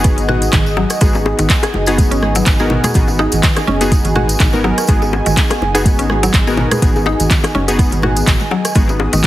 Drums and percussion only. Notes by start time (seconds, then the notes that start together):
0.04 kick, closed hi-hat, tambourine, low bongo
0.18 closed hi-hat, tambourine
0.29 cross-stick, mid tom, low bongo
0.42 closed hi-hat, tambourine
0.53 kick, clap, closed hi-hat, mid tom, tambourine
0.66 tambourine
0.77 high bongo
0.90 cross-stick, closed hi-hat, tambourine
1.01 kick, closed hi-hat, tambourine, muted conga
1.15 tambourine, high bongo
1.26 high bongo
1.39 closed hi-hat, tambourine, muted conga, high conga
1.50 kick, clap, closed hi-hat, tambourine
1.63 cross-stick, closed hi-hat, tambourine, high bongo
1.74 low bongo, muted conga
1.86 closed hi-hat, tambourine
1.98 kick, closed hi-hat, tambourine, high conga
2.11 closed hi-hat, tambourine, muted conga
2.22 cross-stick, high conga
2.35 closed hi-hat, tambourine, low bongo
2.46 kick, clap, closed hi-hat, tambourine
2.59 tambourine, muted conga
2.70 mid tom, low bongo
2.84 cross-stick, closed hi-hat, mid tom, tambourine, high conga
2.94 kick, closed hi-hat, mid tom, tambourine, muted conga, low conga
3.08 tambourine, high bongo
3.19 high bongo
3.32 closed hi-hat, tambourine, muted conga, low conga
3.43 kick, clap, closed hi-hat, tambourine
3.56 cross-stick, closed hi-hat, tambourine, high bongo
3.68 low bongo, muted conga, high conga
3.81 closed hi-hat, tambourine
3.92 kick, closed hi-hat, tambourine, low bongo, high conga
4.04 closed hi-hat, tambourine, muted conga, low conga
4.15 cross-stick, mid tom, low bongo, high conga
4.29 closed hi-hat, tambourine
4.40 kick, clap, closed hi-hat, mid tom, tambourine
4.53 tambourine, muted conga
4.64 high bongo
4.78 cross-stick, closed hi-hat, tambourine
4.87 kick, closed hi-hat, tambourine, muted conga
5.02 tambourine, high bongo
5.13 high bongo
5.26 closed hi-hat, tambourine, muted conga, high conga
5.37 kick, clap, closed hi-hat, tambourine
5.50 cross-stick, closed hi-hat, tambourine, high bongo
5.62 low bongo, muted conga
5.75 closed hi-hat, tambourine
5.85 kick, closed hi-hat, tambourine, high conga
5.99 closed hi-hat, tambourine, muted conga
6.10 cross-stick, high conga
6.23 closed hi-hat, tambourine, low bongo
6.34 kick, clap, closed hi-hat, tambourine
6.48 tambourine, muted conga
6.57 mid tom, low bongo
6.71 cross-stick, closed hi-hat, mid tom, tambourine, high conga
6.82 kick, closed hi-hat, mid tom, tambourine, muted conga, low conga
6.96 tambourine, high bongo
7.06 high bongo
7.20 closed hi-hat, tambourine, muted conga, low conga
7.30 kick, clap, closed hi-hat, tambourine
7.44 cross-stick, closed hi-hat, tambourine, high bongo
7.55 low bongo, muted conga, high conga
7.68 closed hi-hat, tambourine
7.79 kick, closed hi-hat, tambourine, low bongo, high conga
7.92 closed hi-hat, tambourine, muted conga, low conga
8.02 cross-stick, mid tom, low bongo, high conga
8.16 closed hi-hat, tambourine
8.27 kick, clap, closed hi-hat, mid tom, tambourine
8.40 tambourine, muted conga
8.51 high bongo
8.65 cross-stick, closed hi-hat, tambourine
8.75 kick, closed hi-hat, tambourine, muted conga
8.89 tambourine, high bongo
9.00 high bongo
9.13 closed hi-hat, tambourine, muted conga, high conga
9.24 clap, closed hi-hat